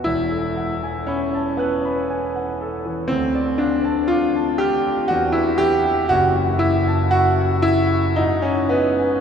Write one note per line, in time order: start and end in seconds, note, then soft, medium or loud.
0.04 3.06 E1 soft
0.04 3.07 E2 medium
0.04 1.07 E4 medium
0.31 0.72 A4 soft
0.57 0.97 F#5 soft
0.83 1.24 G#5 soft
1.07 1.59 C#4 medium
1.07 1.50 B5 soft
1.34 1.75 A5 soft
1.57 2.60 B3 medium
1.57 2.01 F#6 soft
1.85 2.26 B5 soft
2.10 2.51 G#5 soft
2.36 2.76 F#5 soft
2.61 3.01 A4 soft
2.86 3.10 E3 soft
3.08 5.07 D2 medium
3.08 3.59 C4 loud
3.35 3.75 D5 soft
3.58 4.09 D4 medium
3.58 4.00 F5 soft
3.84 4.25 A5 medium
4.08 4.59 F4 loud
4.08 4.50 D6 soft
4.35 4.76 A5 medium
4.58 5.10 G4 loud
4.58 5.01 F6 medium
4.86 5.11 D6 soft
5.08 6.08 E2 medium
5.08 5.34 F#4 loud
5.32 5.59 E4 loud
5.32 5.75 B4 soft
5.58 6.10 G4 loud
5.58 6.01 E5 soft
5.85 6.11 G5 soft
6.09 8.13 F#1 medium
6.09 8.14 F#2 medium
6.09 6.35 F#4 loud
6.36 6.78 F#4 soft
6.59 7.12 E4 loud
6.59 7.03 E5 soft
6.88 7.29 A5 medium
7.11 7.64 F#4 loud
7.11 7.55 C#6 medium
7.39 7.81 F#5 medium
7.62 8.16 E4 loud
7.62 8.07 E6 medium
7.91 8.17 C#6 soft
8.16 9.21 G#2 medium
8.16 8.44 D#4 loud
8.42 8.70 C#4 medium
8.42 8.87 F#4 soft
8.69 9.21 B3 loud
8.69 9.14 D#5 soft
8.98 9.21 G#5 soft